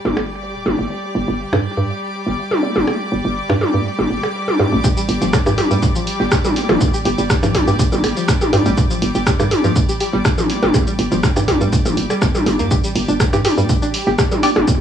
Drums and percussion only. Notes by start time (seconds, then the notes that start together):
0.05 high tom
0.17 closed hi-hat, percussion blips
0.30 shaker
0.42 closed hi-hat
0.54 shaker
0.66 closed hi-hat, high tom
0.79 shaker
0.89 closed hi-hat
1.04 closed hi-hat
1.15 closed hi-hat, shaker
1.40 closed hi-hat
1.53 percussion blips
1.64 closed hi-hat
1.77 closed hi-hat
1.89 closed hi-hat, shaker
2.14 closed hi-hat
2.26 snare
2.38 closed hi-hat
2.51 high tom, shaker
2.62 snare, closed hi-hat
2.76 high tom
2.87 closed hi-hat, percussion blips
3.12 closed hi-hat, shaker
3.37 closed hi-hat
3.50 percussion blips
3.61 snare, closed hi-hat, high tom
3.74 shaker
3.85 closed hi-hat
3.99 high tom
4.11 closed hi-hat
4.23 percussion blips, shaker
4.34 closed hi-hat
4.48 high tom, shaker
4.59 closed hi-hat, high tom
4.72 shaker
4.83 kick, closed hi-hat, shaker
4.97 closed hi-hat, shaker
5.09 closed hi-hat, open hi-hat
5.22 open hi-hat, shaker
5.33 kick, cross-stick, snare, closed hi-hat, percussion blips, shaker
5.46 percussion blips, shaker
5.58 closed hi-hat, open hi-hat, high tom
5.71 closed hi-hat, shaker
5.82 kick, closed hi-hat, shaker
5.95 shaker
6.07 closed hi-hat, open hi-hat
6.21 snare
6.32 kick, cross-stick, snare, closed hi-hat, shaker
6.45 high tom, shaker
6.56 snare, closed hi-hat, open hi-hat
6.69 closed hi-hat, open hi-hat, high tom, percussion blips
6.81 kick, closed hi-hat, shaker
6.94 shaker
7.05 closed hi-hat, open hi-hat
7.18 open hi-hat, shaker
7.30 kick, cross-stick, snare, closed hi-hat, shaker
7.43 closed hi-hat, percussion blips, shaker
7.54 kick, snare, closed hi-hat, open hi-hat, high tom
7.68 shaker
7.79 kick, closed hi-hat, shaker
7.92 high tom, shaker
8.04 closed hi-hat, open hi-hat, percussion blips
8.17 shaker
8.28 kick, cross-stick, snare, closed hi-hat, shaker
8.41 high tom, shaker
8.53 closed hi-hat, open hi-hat, high tom
8.66 open hi-hat, shaker
8.77 kick, closed hi-hat, shaker
8.90 closed hi-hat, shaker
9.02 closed hi-hat, open hi-hat
9.15 open hi-hat, shaker
9.27 kick, cross-stick, snare, closed hi-hat, shaker
9.40 percussion blips, shaker
9.51 closed hi-hat, open hi-hat, high tom
9.64 closed hi-hat, shaker
9.76 kick, closed hi-hat, shaker
9.89 shaker
10.00 closed hi-hat, open hi-hat
10.12 snare
10.24 kick, cross-stick, snare, closed hi-hat, shaker
10.38 high tom, shaker
10.50 snare, closed hi-hat, open hi-hat
10.62 closed hi-hat, open hi-hat, high tom
10.74 kick, closed hi-hat, percussion blips, shaker
10.87 shaker
10.99 closed hi-hat, open hi-hat
11.12 open hi-hat, shaker
11.23 kick, cross-stick, snare, closed hi-hat, shaker
11.36 closed hi-hat, percussion blips, shaker
11.48 kick, snare, closed hi-hat, open hi-hat, high tom
11.61 shaker
11.73 kick, closed hi-hat, shaker
11.86 high tom, shaker
11.97 closed hi-hat, open hi-hat
12.10 percussion blips, shaker
12.22 kick, cross-stick, snare, closed hi-hat, shaker
12.35 high tom, shaker
12.46 closed hi-hat, open hi-hat, high tom
12.59 open hi-hat, shaker
12.71 kick, closed hi-hat, shaker
12.84 closed hi-hat, shaker
12.96 closed hi-hat, open hi-hat
13.09 open hi-hat, shaker
13.20 kick, cross-stick, snare, closed hi-hat, percussion blips, shaker
13.33 percussion blips, shaker
13.44 closed hi-hat, open hi-hat, high tom
13.58 closed hi-hat, shaker
13.69 kick, closed hi-hat, shaker
13.82 shaker
13.94 closed hi-hat, open hi-hat
14.07 snare
14.19 kick, cross-stick, snare, closed hi-hat, shaker
14.31 high tom, shaker
14.42 snare, closed hi-hat, open hi-hat
14.56 closed hi-hat, open hi-hat, high tom, percussion blips
14.68 kick, closed hi-hat, shaker